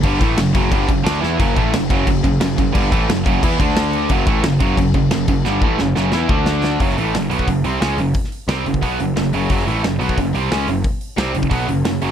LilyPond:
<<
  \new Staff \with { instrumentName = "Distorted electric guitar" } { \clef bass \time 4/4 \key fis \minor \tempo 4 = 178 <g, d g>8 <a, e a>8 <fis, cis>8 <fis, cis fis>8 <g, d g>8 <fis, cis>8 <d a d'>8 <e b e'>8 | <fis, cis fis>8 <a, e a>8 <fis, cis>8 <fis, cis fis>8 <fis, cis>8 <fis, cis>8 <fis, cis>8 <fis, cis>8 | <g, d g>8 <a, e a>8 <fis, cis>8 <fis, cis fis>8 <e b e'>8 <d a d'>4. | <fis, cis fis>8 <a, e a>8 <fis, cis>8 <fis, cis fis>8 <fis, cis>8 <fis, cis>8 <fis, cis>8 <fis, cis>8 |
<g, d g>8 <a, e a>8 <fis, cis>8 <fis, cis fis>8 <e b e'>8 <d a d'>4. | <fis, cis fis>8 <a, e a>8 <fis, cis>8 <b, fis b>8 <fis, cis>8 <bis, g bis>8 <cis gis cis'>8 <fis, cis>8 | r4 <bis, g bis>8 <fis, cis>8 <b, fis b>8 <fis, cis>8 <fis, cis>8 <fis, cis fis>8 | <fis, cis fis>8 <a, e a>8 <fis, cis>8 <b, fis b>8 <fis, cis>8 <bis, g bis>8 <cis gis cis'>8 <fis, cis>8 |
r4 <bis, g bis>8 <fis, cis>8 <b, fis b>8 <fis, cis>8 <fis, cis>8 <fis, cis fis>8 | }
  \new Staff \with { instrumentName = "Distorted electric guitar" } { \clef bass \time 4/4 \key fis \minor <g, d g>8 <a, e a>8 <fis, cis>8 <fis, cis fis>8 <g, d g>8 <fis, cis>8 <d a d'>8 <e b e'>8 | <fis, cis fis>8 <a, e a>8 <fis, cis>8 <fis, cis fis>8 <fis, cis>8 <fis, cis>8 <fis, cis>8 <fis, cis>8 | <g, d g>8 <a, e a>8 <fis, cis>8 <fis, cis fis>8 <e b e'>8 <d a d'>4. | <fis, cis fis>8 <a, e a>8 <fis, cis>8 <fis, cis fis>8 <fis, cis>8 <fis, cis>8 <fis, cis>8 <fis, cis>8 |
<g, d g>8 <a, e a>8 <fis, cis>8 <fis, cis fis>8 <e b e'>8 <d a d'>4. | <fis, cis fis>8 <a, e a>8 <fis, cis>8 <b, fis b>8 <fis, cis>8 <bis, g bis>8 <cis gis cis'>8 <fis, cis>8 | r4 <bis, g bis>8 <fis, cis>8 <b, fis b>8 <fis, cis>8 <fis, cis>8 <fis, cis fis>8 | <fis, cis fis>8 <a, e a>8 <fis, cis>8 <b, fis b>8 <fis, cis>8 <bis, g bis>8 <cis gis cis'>8 <fis, cis>8 |
r4 <bis, g bis>8 <fis, cis>8 <b, fis b>8 <fis, cis>8 <fis, cis>8 <fis, cis fis>8 | }
  \new Staff \with { instrumentName = "Picked electric bass" } { \clef bass \time 4/4 \key fis \minor g,,8 a,,8 fis,,8 fis,,8 g,,8 fis,,8 d,8 e,8 | fis,,8 a,,8 fis,,8 fis,,8 fis,,8 fis,,8 fis,,8 fis,,8 | g,,8 a,,8 fis,,8 fis,,8 e,8 d,4. | fis,,8 a,,8 fis,,8 fis,,8 fis,,8 fis,,8 fis,,8 fis,,8 |
g,,8 a,,8 fis,,8 fis,,8 e,8 d,4. | fis,,8 a,,8 fis,,8 b,,8 fis,,8 bis,,8 cis,8 fis,,8 | r4 bis,,8 fis,,8 b,,8 fis,,8 fis,,8 fis,,8 | fis,,8 a,,8 fis,,8 b,,8 fis,,8 bis,,8 cis,8 fis,,8 |
r4 bis,,8 fis,,8 b,,8 fis,,8 fis,,8 fis,,8 | }
  \new DrumStaff \with { instrumentName = "Drums" } \drummode { \time 4/4 <cymc bd>8 <cymc bd>8 <cymc sn>8 <cymc bd>8 <cymc bd>8 <cymc bd>8 <cymc sn>8 sn8 | <cymc bd>8 <cymc bd>8 <cymc sn>8 <cymc bd>8 <cymc bd>8 <cymc bd>8 <cymc sn>8 <cymc bd>8 | <cymc bd>8 <cymc bd>8 <cymc sn>8 <cymc bd>8 <cymc bd>8 <cymc bd>8 <cymc sn>8 cymc8 | <cymc bd>8 <cymc bd>8 <cymc sn>8 <cymc bd>8 <cymc bd>8 <cymc bd>8 <cymc sn>8 <cymc bd>8 |
sn8 bd8 sn8 sn8 sn8 bd8 sn8 sn8 | <hho bd>16 sn16 hho8 <hho sn>8 hho16 bd16 <hho bd>8 hho8 <hho sn>8 hho8 | <hho bd>16 sn16 hho8 <hho sn>8 hho16 bd16 <hho bd>8 hho8 <hho sn>8 hho8 | <hho bd>16 sn16 hho8 <hho sn>8 hho16 bd16 <hho bd>8 hho8 <hho sn>8 hho8 |
<hho bd>8 hho8 <hho sn>8 hho16 bd16 <hho bd>8 hho8 <hho sn>8 hho8 | }
>>